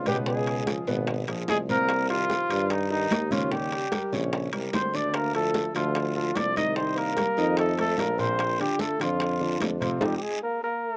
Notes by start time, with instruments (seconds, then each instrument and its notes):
Already playing: tuba C#2
0.06 grand piano B2 B3 B4, trombone G3, trumpet G4, high conga, high timbale, short guiro
0.26 grand piano B2 B3 B4, trombone G#3, trumpet G#4, high bongo, long guiro
0.47 high bongo, high conga, high timbale
0.67 grand piano F3 F4 G#4, high bongo, high conga, high timbale, low timbale, short guiro
0.87 tuba G#1, grand piano B2 B3 B4, high bongo, high conga, short guiro
1.07 high bongo, high timbale, long guiro
1.27 tuba A#1, grand piano F3 F4 G#4, high bongo, high conga, high timbale
1.48 tuba C2, trombone G#3, trumpet G#4, high bongo, low bongo, high conga, high timbale, low timbale, short guiro
1.69 grand piano C3 C4 C5, trombone A#3, trumpet A#4, high conga, short guiro
1.89 high bongo, high conga, high timbale, long guiro
2.10 grand piano D#3 D#4 G4, trombone F3, trumpet F4, high bongo, high conga, high timbale
2.30 high bongo, high conga, low timbale, short guiro
2.50 tuba G2, grand piano D#3 D#4 G4, high bongo, high conga, high timbale, short guiro
2.70 trombone D#3, trumpet D#4, high bongo, high conga, high timbale, long guiro
2.90 grand piano D#3 D#4 G4, trombone D#3, trumpet D#4, high bongo, high conga
3.11 tuba D#2, high bongo, low bongo, high conga, high timbale, low timbale, short guiro
3.31 grand piano C#3 C#4 C#5, trombone F3, trumpet F4, high conga, high timbale, short guiro
3.52 grand piano C#3 C#4 C#5, trombone G3, trumpet G4, high bongo, high conga, long guiro
3.72 high bongo, high conga, high timbale
3.92 grand piano G3 G4 A#4, high bongo, high conga, high timbale, low timbale, short guiro
4.12 tuba A#1, grand piano C#3 C#4 C#5, high bongo, high conga, short guiro
4.33 high bongo, high conga, high timbale, long guiro
4.53 tuba C2, grand piano G3 G4 A#4, high bongo, high conga, high timbale
4.73 tuba D2, trombone C4, trumpet C5, high bongo, low bongo, high conga, high timbale, low timbale, short guiro
4.94 grand piano D3 D4 D5, trombone D4, trumpet D5, short guiro
5.14 trombone A#3, trumpet A#4, high bongo, high conga, high timbale, long guiro
5.34 grand piano F3 F4 A4, trombone A3, trumpet A4, high bongo, high conga, high timbale
5.54 high bongo, high conga, low timbale, short guiro
5.74 tuba D2, trombone F3, grand piano F3 F4 A4, trumpet F4, high bongo, high conga, high timbale, short guiro
5.95 high bongo, high conga, high timbale, long guiro
6.15 grand piano F3 F4 A4, trombone F3, trumpet F4, high bongo, high conga
6.36 tuba C2, trombone D4, trumpet D5, high bongo, low bongo, high conga, high timbale, low timbale, short guiro
6.56 grand piano D#3 D#4 D#5, trombone D#4, trumpet D#5, high conga, high timbale, short guiro
6.76 grand piano D#3 D#4 D#5, trombone C4, trumpet C5, high bongo, high conga, long guiro
6.97 trombone A#3, trumpet A#4, high bongo, high conga, high timbale
7.17 grand piano G3 G4 A#4, high bongo, high conga, high timbale, low timbale, short guiro
7.37 tuba F2, grand piano D#3 D#4 D#5, high bongo, high conga, short guiro
7.57 trombone A3, trumpet A4, high bongo, high conga, high timbale, long guiro
7.78 grand piano A3 A4 C5, trombone A3, trumpet A4, high bongo, high conga, high timbale
7.98 tuba A#1, trombone A#3, trumpet A#4, high bongo, low bongo, high conga, high timbale, low timbale, short guiro
8.18 grand piano A#2 A#3 A#4, trombone C4, trumpet C5, high conga, short guiro
8.38 high bongo, high conga, high timbale, long guiro
8.59 grand piano D3 D4 F4, trombone G3, trumpet G4, high bongo, high conga, high timbale
8.79 trombone A3, trumpet A4, high bongo, high conga, low timbale, short guiro
9.00 tuba F2, grand piano D3 D4 F4, trombone F3, trumpet F4, high bongo, high conga, high timbale, short guiro
9.20 high bongo, high conga, high timbale, long guiro
9.40 grand piano D3 D4 F4, high bongo, high conga
9.60 tuba F2, high bongo, low bongo, high conga, high timbale, low timbale, short guiro
9.81 grand piano C3 C4 C5, trombone F3, trumpet F4, high conga, high timbale, short guiro
10.00 tuba F2, trombone G3, grand piano C4 D#4 F4, trumpet G4, high bongo, high conga, high timbale, long guiro
10.17 trombone G3, trumpet G4
10.22 trombone G#3, trumpet G#4
10.42 trombone A#3, trumpet A#4
10.63 trombone A#3, trumpet A#4